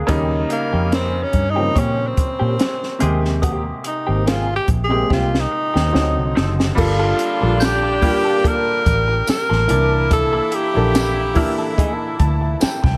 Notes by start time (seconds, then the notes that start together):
Already playing: D3 G#3 C4 G#4 A#4 D5 F5 G5 G#5
0.07 D#2 C#3 G3 A#3 C#4 D#4 G4 A#5, kick, closed hi-hat
0.31 muted clean electric guitar stroke
0.50 A#3, muted clean electric guitar stroke, closed hi-hat
0.73 F2 A#3 C#4 G4
0.92 A#3 C4 C#4 A#4, snare, closed hi-hat
1.23 C#4
1.33 G2, muted clean electric guitar stroke, kick, closed hi-hat
1.50 D#4
1.55 C#3 F3 A#3 C4 C#4 G4
1.62 G3
1.75 A#2 A#3 C#4 G4 C#6, kick, closed hi-hat
2.07 C4
2.17 muted clean electric guitar stroke, kick, closed hi-hat
2.39 A#2 A#3 C#4 G4
2.59 muted clean electric guitar stroke, snare, closed hi-hat
2.83 snare
2.99 D#2 C3 G#3 A#3 C4 G4 G#4, closed hi-hat
3.23 muted clean electric guitar stroke, snare
3.42 A#3 C4 G4 D#6, kick, closed hi-hat
3.64 muted clean electric guitar stroke
3.84 D#4, muted clean electric guitar stroke, closed hi-hat
4.07 G#1 A#3 C4 G4
4.26 A#3 C4 F4 G#4, snare, closed hi-hat
4.56 G4
4.68 A#1, muted clean electric guitar stroke, kick, closed hi-hat
4.84 G#4
4.89 C3 G#3 A#3 C4 G4
5.10 C2 A#3 C4 F4 G4, kick, snare
5.35 snare
5.40 D#4
5.52 muted clean electric guitar stroke
5.74 D#2 A#3 C4 G4, snare
5.91 D2 D3 F#3 C4 D#4, muted clean electric guitar stroke, snare
6.17 C2
6.35 F#1 C4 D#4 A4, snare
6.58 muted clean electric guitar stroke, snare
6.75 G1 D3 G3 A#3 D4 F4 A4, muted clean electric guitar stroke, kick, crash
6.80 F4
6.99 A#3 F4 A4
7.19 muted clean electric guitar stroke, closed hi-hat
7.40 A#1 G3 A#3 F4 A4, muted clean electric guitar stroke
7.60 G6, muted clean electric guitar stroke, snare, closed hi-hat, tambourine
7.64 G4
7.83 muted clean electric guitar stroke
8.01 G3 A#3 F4 G4 A#4, kick, open hi-hat
8.24 A#3 F4 A4
8.44 A#3 F4 A4 A#4, kick, closed hi-hat
8.86 A1, muted clean electric guitar stroke, kick, closed hi-hat
9.08 muted clean electric guitar stroke
9.27 A#4, muted clean electric guitar stroke, muted fingered electric bass stroke, snare, closed hi-hat, tambourine
9.49 A1 A#3 F4 A4, snare
9.68 C2 A#2 E3 A#3 D4 E4 A5 D6, muted clean electric guitar stroke, closed hi-hat
9.91 muted clean electric guitar stroke
10.11 A4, muted clean electric guitar stroke, kick, closed hi-hat
10.33 A#3 E4 A4
10.52 G4, muted clean electric guitar stroke, closed hi-hat
10.74 A#1 E3 A#3 D4 A4, muted clean electric guitar stroke
10.94 muted clean electric guitar stroke, snare, closed hi-hat, tambourine
11.17 muted clean electric guitar stroke
11.34 E3 A#3 D4 E4 A#4, kick, open hi-hat
11.58 A#3 E4 A4
11.77 A3 D#4 G#4, kick, closed hi-hat
11.93 A#3 E4 A4
12.19 D2 A5, muted clean electric guitar stroke, kick, closed hi-hat
12.41 muted clean electric guitar stroke
12.60 G5, muted clean electric guitar stroke, muted fingered electric bass stroke, snare, closed hi-hat, tambourine
12.83 C2 G5, muted clean electric guitar stroke, kick, snare